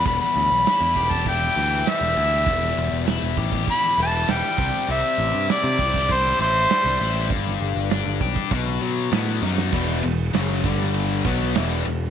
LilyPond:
<<
  \new Staff \with { instrumentName = "Harmonica" } { \time 4/4 \key e \minor \tempo 4 = 99 b''16 b''4. a''16 g''4 e''4~ | e''4 r4 b''8 a''8 g''4 | e''4 d''4 c''8 c''4. | r1 |
r1 | }
  \new Staff \with { instrumentName = "Distorted electric guitar" } { \clef bass \time 4/4 \key e \minor e,4 e'8 g'8 e'8 e8 g8 e'8 | e,4 e'8 g'8 e'8 e8 g8 c8 | c4 e'8 g'8 e'8 e8 g8 e'8 | g,4 d'8 g'8 b,8 fis8 b8 dis'8 |
<e, b, e>8 <e, b,>8 <fis, cis fis>8 <g, d g>4 <b, fis b>8 <e, b, e>8 <e, b,>8 | }
  \new Staff \with { instrumentName = "Distorted electric guitar" } { \clef bass \time 4/4 \key e \minor r1 | r1 | r1 | r1 |
<e, b, e>8 <e, b,>8 <fis, cis fis>8 <g, d g>4 <b, fis b>8 <e, b, e>8 <e, b,>8 | }
  \new Staff \with { instrumentName = "Picked electric bass" } { \clef bass \time 4/4 \key e \minor e,,16 r16 d,16 b,,16 r16 e,16 e,,4 d,8 r16 e,,16 d,8 | e,,8 e,,16 e,,8 e,,16 a,,8 r8 e,,8 e,,16 r16 c,16 r16 | c,16 r16 a,,16 g,16 r16 c16 c,4 a,,8 r16 c,16 a,,8 | g,,8 g,,16 g,,8 g,,16 b,,16 r16 b,,8 b,8 a,8 fis,8 |
e,,8 e,,8 fis,,8 g,,4 b,,8 e,,8 e,,8 | }
  \new DrumStaff \with { instrumentName = "Drums" } \drummode { \time 4/4 <hho bd>4 <hho sn>8 bd16 bd16 <hho bd>8 sn8 <hho sn>4 | <hho bd>4 <hho sn>8 bd16 <bd sn>16 <hho bd>8 sn8 <hho sn>8 bd8 | hho4 <hho sn>8 bd16 <bd sn>16 <hho bd>8 sn8 <hho sn>4 | <hho bd>4 <hho sn>8 bd16 <bd sn>16 <hho bd>4 <hho sn>8 sn16 sn16 |
<cymc bd>8 cymr8 <cymr sn>8 <bd cymr>8 cymr8 <bd cymr sn>8 <cymr sn>8 cymr8 | }
>>